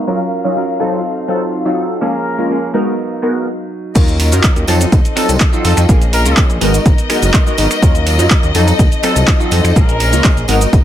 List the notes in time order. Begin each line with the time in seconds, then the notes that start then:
Already playing: F5
0.07 F#3 C#4 D#4 F4 A#4
0.44 F#3 C#4 D#4 F4 A#4
0.56 F#3 C#4 F4 A#4
0.80 F#3 C4 D#4 F4 A4
1.28 F#3 C4 D#4 F4 A4
1.65 F#3 C4 D#4 F4 A4
2.01 F3 G#3 A#3 C#4 F4 G#4 A#4
2.38 G#3 A#3 C#4 F4 A#4
2.50 F3 A#3 C#4 G#4
2.74 F#3 G#3 B3 D#4 F#4 A#4
3.22 G#3 B3 D#4 F#4 A#4
3.95 D#2 F#3 C#4 D#4 F4 A#4 D#5, kick, closed hi-hat, crash, tambourine, shaker
4.08 closed hi-hat, shaker
4.19 F#3 C#4 F4 A#4, open hi-hat, tambourine
4.32 F#2 F#3 C#4 D#4 F4 A#4, closed hi-hat, tambourine, shaker
4.43 F#3 F4, kick, clap, closed hi-hat, shaker
4.56 D#2, closed hi-hat, shaker
4.67 F2 F#3 C4 D#4 F4 A4, open hi-hat, tambourine
4.80 C4 D#4 A4, closed hi-hat, tambourine, shaker
4.92 D#2, kick, closed hi-hat, tambourine, shaker
5.05 closed hi-hat, shaker
5.15 F#3 C4 D#4 F4 A4, finger snap, open hi-hat, tambourine
5.29 C2, closed hi-hat, tambourine, shaker
5.40 F#3 C4 D#4, kick, clap, closed hi-hat, shaker
5.52 F#3 C4 D#4 F4 A4, shaker
5.64 F2 F#3 C4 D#4 A4, open hi-hat, tambourine
5.77 F2 C4 D#4 A4, finger snap, closed hi-hat, tambourine, shaker
5.88 A#1 F3 G#3 A#3 C#4 F4 G#4 A#4, kick, closed hi-hat, shaker
6.01 closed hi-hat, shaker
6.13 F3 A#3 C#4 G#4 A#4, open hi-hat, tambourine
6.25 C#2 G#3 A#3 C#4 F4 A#4, closed hi-hat, tambourine, shaker
6.37 kick, clap, closed hi-hat, shaker
6.50 A#1, closed hi-hat, shaker
6.61 G#1 F#3 G#3 B3 D#4 F#4 A#4, open hi-hat, tambourine
6.74 B3 D#4 A#4, closed hi-hat, tambourine, shaker
6.86 G#1, kick, closed hi-hat, shaker
6.98 closed hi-hat, shaker
7.09 F#3 G#3 B3 D#4 F#4 A#4, finger snap, open hi-hat, tambourine
7.22 F#1, closed hi-hat, tambourine, shaker
7.33 F#3 B3 D#4, kick, clap, closed hi-hat, shaker
7.46 G#3 B3 D#4 F#4 A#4, shaker
7.58 G#1 F#3 B3 D#4 A#4, open hi-hat, tambourine
7.70 B3 D#4 A#4, finger snap, closed hi-hat, tambourine, shaker
7.82 D#2 F#3 C#4 D#4 F4 A#4, kick, closed hi-hat, tambourine, shaker
7.95 closed hi-hat, shaker
8.06 F#3 C#4 F4 A#4, open hi-hat, tambourine
8.19 F#2 F#3 C#4 D#4 F4 A#4, closed hi-hat, tambourine, shaker
8.30 C#4, kick, clap, closed hi-hat, shaker
8.43 D#2, closed hi-hat, shaker
8.54 F2 F#3 C4 D#4 F4 A4, open hi-hat, tambourine
8.67 C4 D#4 A4, closed hi-hat, tambourine, shaker
8.79 D#2, kick, closed hi-hat, shaker
8.92 closed hi-hat, shaker
9.02 F#3 C4 D#4 F4 A4, finger snap, open hi-hat, tambourine
9.16 C2, closed hi-hat, tambourine, shaker
9.28 kick, clap, closed hi-hat, shaker
9.39 F#3 C4 D#4 F4 A4, shaker
9.51 F2 F#3 C4 D#4 A4, open hi-hat, tambourine
9.64 F2 C4 D#4 A4, finger snap, closed hi-hat, tambourine, shaker
9.75 A#1 F3 G#3 A#3 C#4 F4 G#4 A#4, kick, closed hi-hat, shaker
9.89 closed hi-hat, shaker
10.00 F3 A#3 C#4 G#4, open hi-hat, tambourine
10.13 C#2 G#3 A#3 C#4 F4 A#4, closed hi-hat, tambourine, shaker
10.24 F3 A#3 C#4 G#4, kick, clap, closed hi-hat, shaker
10.37 A#1, closed hi-hat, shaker
10.48 G#1 F#3 G#3 B3 D#4 F#4 A#4, open hi-hat, tambourine
10.61 B3 D#4 A#4, closed hi-hat, tambourine, shaker
10.73 G#1, kick, closed hi-hat, tambourine, shaker